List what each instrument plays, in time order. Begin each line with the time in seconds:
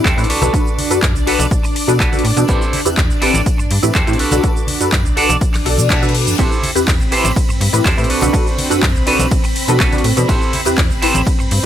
Already playing: string machine D4 D5
0.04 fm bass E2, clean electric guitar E4 G4 A4 C5, kick, clap, closed hi-hat, tambourine, cabasa
0.17 fm bass A2, analog polysynth C4 E4 G4 B4, closed hi-hat, tambourine, cabasa
0.24 closed hi-hat
0.29 fm bass B1, clean electric guitar D4 F#4 A4 B4, open hi-hat
0.41 fm bass B1, analog polysynth D4 F#4 A4 B4, closed hi-hat, tambourine, high conga, low conga, cabasa
0.53 analog polysynth D4 F#4 A4 B4, kick, closed hi-hat, tambourine, cabasa
0.66 tambourine, cabasa
0.78 open hi-hat, low conga
0.90 fm bass F#2, analog polysynth D4 F#4 A4 B4, closed hi-hat, tambourine, cabasa
1.02 fm bass F#2, kick, clap, closed hi-hat, tambourine, cabasa
1.15 fm bass B1, muted clean electric guitar stroke, tambourine, cabasa
1.26 fm bass B1, analog polysynth D4 F#4 A4 B4, clean electric guitar D4 F#4 A4 B4, open hi-hat
1.39 fm bass B1, closed hi-hat, tambourine, high conga, cabasa
1.51 fm bass B1, kick, closed hi-hat, tambourine, cabasa
1.63 muted clean electric guitar stroke, open hi-hat, tambourine, cabasa
1.75 muted clean electric guitar stroke, open hi-hat
1.87 fm bass B2, analog polysynth D4 F#4 A4 B4, closed hi-hat, tambourine, high conga, cabasa
2.00 fm bass B1, clean electric guitar D4 F#4 A4 B4, kick, clap, closed hi-hat, cabasa
2.12 analog polysynth D4 F#4 A4 B4, closed hi-hat, tambourine, low conga, cabasa
2.19 closed hi-hat
2.24 fm bass A2, open hi-hat
2.37 fm bass B2, analog polysynth D4 F#4 A4 B4, closed hi-hat, tambourine, high conga, cabasa
2.48 fm bass A1, analog polysynth C4 E4 G4 B4, clean electric guitar E4 G4 A4 C5, kick, closed hi-hat, tambourine, cabasa
2.61 tambourine, cabasa
2.73 open hi-hat, low conga
2.85 fm bass E2, analog polysynth C4 E4 G4 B4, closed hi-hat, tambourine, cabasa
2.97 fm bass E2, kick, clap, closed hi-hat, tambourine, cabasa
3.10 fm bass A1, muted clean electric guitar stroke, tambourine, cabasa
3.21 fm bass A1, analog polysynth C4 E4 G4 B4, clean electric guitar E4 G4 A4 D5, open hi-hat
3.34 fm bass A1, closed hi-hat, tambourine, high conga, cabasa
3.46 kick, closed hi-hat, tambourine, cabasa
3.58 fm bass G2, muted clean electric guitar stroke, tambourine, cabasa
3.70 fm bass G2, muted clean electric guitar stroke, open hi-hat
3.82 fm bass A2, analog polysynth C4 E4 G4 B4, closed hi-hat, tambourine, high conga, cabasa
3.95 fm bass E2, clean electric guitar E4 G4 A4 C5, kick, clap, closed hi-hat, tambourine, cabasa
4.07 fm bass A2, analog polysynth C4 E4 G4 B4, closed hi-hat, tambourine, cabasa
4.13 closed hi-hat
4.19 fm bass B1, clean electric guitar D4 F#4 A4 B4, open hi-hat
4.31 fm bass B1, analog polysynth D4 F#4 A4 B4, closed hi-hat, tambourine, high conga, low conga, cabasa
4.43 analog polysynth D4 F#4 A4 B4, kick, closed hi-hat, tambourine, cabasa
4.57 tambourine, cabasa
4.67 open hi-hat, low conga
4.80 fm bass F#2, analog polysynth D4 F#4 A4 B4, closed hi-hat, tambourine, cabasa
4.92 fm bass F#2, kick, clap, closed hi-hat, tambourine, cabasa
5.05 fm bass B1, muted clean electric guitar stroke, tambourine, cabasa
5.16 fm bass B1, analog polysynth D4 F#4 A4 B4, clean electric guitar D4 F#4 A4 D5, open hi-hat
5.29 fm bass B1, closed hi-hat, tambourine, high conga, cabasa
5.41 kick, closed hi-hat, tambourine, reverse cymbal, cabasa
5.54 fm bass B1, muted clean electric guitar stroke, clap, open hi-hat, tambourine, high conga, cabasa
5.65 fm bass B1, analog polysynth D4 F#4 A4 D5, muted clean electric guitar stroke, open hi-hat
5.78 fm bass B2, closed hi-hat, tambourine, high conga, cabasa
5.90 clean electric guitar D4 F#4 A4 B4, kick, clap, closed hi-hat, cabasa
6.02 analog polysynth D4 F#4 A4 B4, closed hi-hat, tambourine, low conga, cabasa
6.09 closed hi-hat
6.15 open hi-hat
6.27 fm bass F#2, closed hi-hat, tambourine, high conga, cabasa
6.38 fm bass A1, analog polysynth C4 E4 G4 B4, string machine C4 B5, clean electric guitar E4 G4 A4 C5, kick, closed hi-hat, ride, cabasa
6.51 tambourine, cabasa
6.63 open hi-hat, low conga
6.75 fm bass E2, analog polysynth C4 E4 G4 B4, closed hi-hat, tambourine, cabasa
6.87 fm bass E2, kick, clap, closed hi-hat, ride, tambourine, cabasa
7.00 fm bass A1, muted clean electric guitar stroke, tambourine, cabasa
7.11 fm bass A1, analog polysynth C4 E4 G4 B4, clean electric guitar E4 G4 A4 C5, open hi-hat
7.24 fm bass A1, closed hi-hat, tambourine, high conga, cabasa
7.36 kick, closed hi-hat, ride, tambourine, cabasa
7.48 fm bass G2, muted clean electric guitar stroke, tambourine, cabasa
7.61 fm bass G2, muted clean electric guitar stroke, open hi-hat
7.73 fm bass A2, analog polysynth C4 E4 G4 B4, closed hi-hat, tambourine, high conga, cabasa
7.85 fm bass E2, clean electric guitar E4 G4 A4 C5, kick, clap, closed hi-hat, ride, tambourine, cabasa
7.97 fm bass A2, analog polysynth C4 E4 G4 B4, closed hi-hat, tambourine, cabasa
8.04 closed hi-hat
8.09 fm bass B1, clean electric guitar D4 F#4 A4 B4, open hi-hat
8.21 fm bass B1, analog polysynth D4 F#4 A4 B4, closed hi-hat, tambourine, high conga, low conga, cabasa
8.33 analog polysynth D4 F#4 A4 B4, kick, closed hi-hat, ride, tambourine, cabasa
8.47 tambourine, cabasa
8.58 open hi-hat, low conga
8.70 fm bass F#2, analog polysynth D4 F#4 A4 B4, closed hi-hat, tambourine, cabasa
8.82 fm bass F#2, kick, clap, closed hi-hat, ride, cabasa
8.95 fm bass B1, muted clean electric guitar stroke, tambourine, cabasa
9.06 fm bass B1, clean electric guitar D4 F#4 A4 B4, analog polysynth D4 F#4 A4 B4, open hi-hat
9.19 fm bass B1, closed hi-hat, tambourine, high conga, cabasa
9.31 fm bass B1, kick, closed hi-hat, ride, tambourine, cabasa
9.44 muted clean electric guitar stroke, open hi-hat, tambourine, cabasa
9.55 muted clean electric guitar stroke, open hi-hat
9.68 fm bass B2, analog polysynth D4 F#4 A4 B4, closed hi-hat, tambourine, high conga, cabasa
9.80 fm bass B1, clean electric guitar D4 F#4 A4 B4, kick, clap, closed hi-hat, ride, tambourine, cabasa
9.92 analog polysynth D4 F#4 A4 B4, closed hi-hat, tambourine, low conga, cabasa
9.98 closed hi-hat
10.04 fm bass A2, open hi-hat
10.17 fm bass B2, analog polysynth D4 F#4 A4 B4, closed hi-hat, tambourine, high conga, cabasa
10.28 fm bass A1, analog polysynth C4 E4 G4 B4, clean electric guitar E4 G4 A4 C5, kick, closed hi-hat, ride, tambourine, cabasa
10.41 tambourine, cabasa
10.53 open hi-hat, low conga
10.65 fm bass E2, analog polysynth C4 E4 G4 B4, closed hi-hat, tambourine, cabasa
10.78 fm bass E2, kick, clap, closed hi-hat, ride, cabasa
10.90 fm bass A1, muted clean electric guitar stroke, tambourine, cabasa
11.02 fm bass A1, analog polysynth C4 E4 G4 B4, clean electric guitar E4 G4 A4 C5, open hi-hat
11.15 fm bass A1, closed hi-hat, tambourine, high conga, cabasa
11.25 kick, closed hi-hat, ride, tambourine, cabasa
11.39 fm bass G2, muted clean electric guitar stroke, tambourine, cabasa
11.50 fm bass G2, muted clean electric guitar stroke, open hi-hat